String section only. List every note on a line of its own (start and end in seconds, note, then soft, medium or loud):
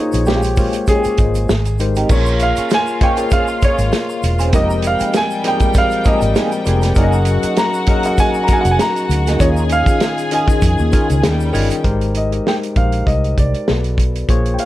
2.09 4.49 F4 medium
2.09 4.49 F5 medium
4.55 6.94 G3 medium
4.55 6.94 G5 medium
6.97 9.37 F#4 medium
6.97 9.37 F#5 loud
9.40 11.20 G#4 medium
9.40 11.20 G#5 medium
11.23 11.83 G3 medium
11.23 11.83 G5 medium